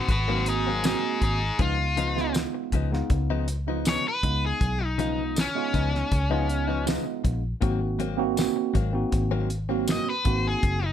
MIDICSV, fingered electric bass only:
0, 0, Header, 1, 2, 480
1, 0, Start_track
1, 0, Tempo, 753769
1, 1016, Time_signature, 4, 2, 24, 8
1, 6958, End_track
2, 0, Start_track
2, 0, Title_t, "Fingered electric bass"
2, 0, Program_c, 0, 33
2, 54, Note_on_c, 0, 32, 106
2, 595, Note_off_c, 0, 32, 0
2, 774, Note_on_c, 0, 32, 73
2, 955, Note_off_c, 0, 32, 0
2, 1015, Note_on_c, 0, 37, 83
2, 1556, Note_off_c, 0, 37, 0
2, 1732, Note_on_c, 0, 37, 81
2, 1914, Note_off_c, 0, 37, 0
2, 1977, Note_on_c, 0, 37, 92
2, 2517, Note_off_c, 0, 37, 0
2, 2695, Note_on_c, 0, 37, 82
2, 2876, Note_off_c, 0, 37, 0
2, 2936, Note_on_c, 0, 35, 89
2, 3476, Note_off_c, 0, 35, 0
2, 3655, Note_on_c, 0, 37, 78
2, 3835, Note_off_c, 0, 37, 0
2, 3895, Note_on_c, 0, 37, 99
2, 4435, Note_off_c, 0, 37, 0
2, 4614, Note_on_c, 0, 34, 81
2, 4794, Note_off_c, 0, 34, 0
2, 4853, Note_on_c, 0, 32, 83
2, 5394, Note_off_c, 0, 32, 0
2, 5573, Note_on_c, 0, 32, 86
2, 5754, Note_off_c, 0, 32, 0
2, 5809, Note_on_c, 0, 32, 85
2, 6351, Note_off_c, 0, 32, 0
2, 6532, Note_on_c, 0, 32, 83
2, 6712, Note_off_c, 0, 32, 0
2, 6769, Note_on_c, 0, 30, 89
2, 6958, Note_off_c, 0, 30, 0
2, 6958, End_track
0, 0, End_of_file